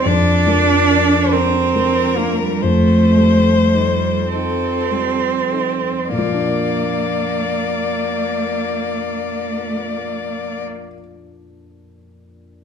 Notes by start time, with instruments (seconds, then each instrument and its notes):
0.04 grand piano F2, cello D4, violin D5
0.47 grand piano F3 A#4
0.89 grand piano D4 A#4
1.31 cello C4, grand piano D4 A#4, violin A#4
1.75 grand piano F3 A#4
2.17 cello A#3, grand piano D4 A#4
2.41 cello G3
2.63 grand piano F2, cello A3, violin C5
3.16 grand piano G3 A4
3.73 cello G3, grand piano D#4 A4
4.31 cello C4, grand piano D#4 A4, violin A4
4.91 grand piano G3 A4
5.51 grand piano D#4 A4
6.09 grand piano A#2, violin D5
6.14 cello A#3
6.18 grand piano F3
6.25 grand piano A#3
6.33 grand piano D4
6.39 grand piano A#4
6.46 grand piano D5